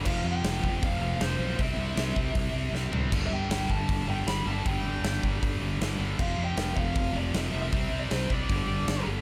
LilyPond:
<<
  \new Staff \with { instrumentName = "Lead electric guitar" } { \time 4/4 \key f \lydian \tempo 4 = 156 f''8 g''4. f''4 c''4 | e''2.~ e''8 r8 | r16. e''32 g''8 g''8 a''4 g''8 b''8 a''8 | g''4. r2 r8 |
\tuplet 3/2 { f''8. r16 g''8~ } g''8 f''4 d''8 \tuplet 3/2 { e''4 e''8~ } | \tuplet 3/2 { e''4 d''8 } c''8 d''2 r8 | }
  \new Staff \with { instrumentName = "Distorted electric guitar" } { \clef bass \time 4/4 \key f \lydian <f, c f>2.~ <f, c f>8 <f, c f>8 | <c g c'>2.~ <c g c'>8 <c g c'>8 | <g, d g>2.~ <g, d g>8 <g, d g>8 | <g, d g>2.~ <g, d g>8 <g, d g>8 |
<f, c f>2.~ <f, c f>8 <f, c f>8 | <c g c'>2 <g, d g>2 | }
  \new Staff \with { instrumentName = "Distorted electric guitar" } { \clef bass \time 4/4 \key f \lydian <f, c f>2~ <f, c f>8 <f, c f>8 <f, c f>4 | <c g c'>2~ <c g c'>8 <c g c'>8 <c g c'>4 | <g, d g>2~ <g, d g>8 <g, d g>8 <g, d g>4 | <g, d g>2~ <g, d g>8 <g, d g>8 <g, d g>4 |
<f, c f>2~ <f, c f>8 <f, c f>8 <f, c f>4 | <c g c'>2 <g, d g>2 | }
  \new Staff \with { instrumentName = "Distorted electric guitar" } { \clef bass \time 4/4 \key f \lydian <f, c f>2.~ <f, c f>8 <f, c f>8 | <c g c'>2.~ <c g c'>8 <c g c'>8 | <g, d g>2.~ <g, d g>8 <g, d g>8 | <g, d g>2.~ <g, d g>8 <g, d g>8 |
<f, c f>2.~ <f, c f>8 <f, c f>8 | <c g c'>2 <g, d g>2 | }
  \new Staff \with { instrumentName = "Fingered electric bass" } { \clef bass \time 4/4 \key f \lydian f,,8 f,8 f,,8 f,,8 f,,8 f,,8 f,,8 b,,8 | c,8 c,8 c,8 c,8 c,8 c,8 c,8 c,8 | g,,8 g,8 g,,8 g,,8 g,,8 g,,8 g,,8 g,,8 | g,,8 g,,8 g,,8 g,,8 g,,8 g,,8 g,,8 g,,8 |
f,,8 f,8 f,,8 f,,8 f,,8 f,,8 f,,8 f,,8 | c,8 c,8 c,8 c,8 g,,8 g,,8 g,,8 g,,8 | }
  \new DrumStaff \with { instrumentName = "Drums" } \drummode { \time 4/4 <cymc bd>4 <hho sn>8 bd8 <hho bd>4 <hho sn>4 | <hho bd>4 <hho sn>8 bd8 <hho bd>4 sn8 tomfh8 | <cymc bd>4 <hho sn>8 bd8 <hho bd>4 <hho sn>4 | <hho bd>4 <hho sn>8 bd8 <hho bd>4 <hho sn>4 |
<cymc bd>4 <hho sn>8 bd8 <hho bd>4 <hho sn>4 | <hho bd>4 <hho sn>8 bd8 <hho bd>4 <hho sn>4 | }
>>